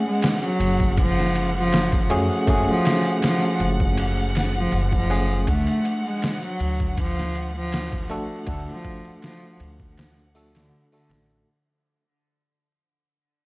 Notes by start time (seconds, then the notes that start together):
Already playing: C#4 G#4 F#5
0.07 G#3
0.22 snare, ride
0.43 F#3, ride
0.60 F#1, ride
0.80 kick
0.98 F3, kick, ride
1.20 snare
1.35 ride
1.57 F3
1.72 snare, ride
1.92 kick
2.10 F#2 A3 C#4 F#4 G#4, ride
2.47 F#1 A3 C#4 G#4 F#5, kick, ride
2.69 F3
2.85 snare, ride
3.05 ride
3.22 F3, snare, ride
3.60 F#1, ride
3.80 kick
3.97 ride
4.35 snare, ride
4.55 F3, ride
4.72 F#1, ride
4.92 F3, kick
5.10 A3 C#4 G#4 F#5, open hi-hat
5.47 D2 A3 D4 F#5, kick, ride
5.67 ride
5.85 ride
6.07 G#3
6.22 snare, ride
6.43 F#3, ride
6.60 D2, ride
6.80 kick
6.97 F3, kick, ride
7.19 snare
7.35 ride
7.57 F3
7.72 snare, ride
7.92 kick
8.10 A1 A3 D4 F#4 A4, ride
8.47 D2 A3 D4 A4 F#5, kick, ride
8.69 F3
8.84 kick, ride
9.05 ride
9.22 F3, snare, ride
9.60 D2, ride
9.80 kick
9.97 snare, ride
10.35 A3 D4 F#4 A4, open hi-hat
10.55 D3, snare, ride
10.92 D3 A3 D4 F#4 A4, open hi-hat
11.09 A1, snare, ride